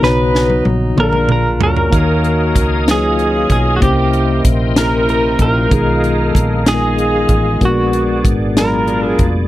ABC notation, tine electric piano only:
X:1
M:6/8
L:1/8
Q:3/8=63
K:Ebm
V:1 name="Tine electric piano"
[=B,^D^F^c^a]2 z [_B,=D=F_A_d=d]2 z | [B,EGdf]2 z [G,B,EFcd]2 z | [B,D=E=G=c]2 z [B,DEGB]2 z | [A,CEFA]2 z [A,CEFAB]2 z |
[A,C=DGB]2 z [G,A,CDBc']2 z |]
V:2 name="Tine electric piano" clef=bass
^C,3 B,,3 | E,3 z3 | =C,3 z3 | E,3 z3 |
B,,3 z3 |]